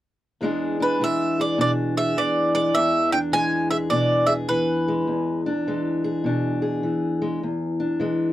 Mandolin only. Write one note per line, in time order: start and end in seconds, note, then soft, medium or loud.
0.82 1.02 B4 medium
1.04 1.40 E5 medium
1.41 1.60 D5 medium
1.61 1.71 D5 medium
1.97 2.18 E5 medium
2.18 2.54 D5 medium
2.55 2.76 D5 medium
2.75 3.12 E5 medium
3.12 3.18 G5 medium
3.33 3.70 G#5 medium
3.71 3.76 E5 medium
3.90 4.29 D5 medium
4.26 4.32 E5 medium
4.49 5.41 B4 medium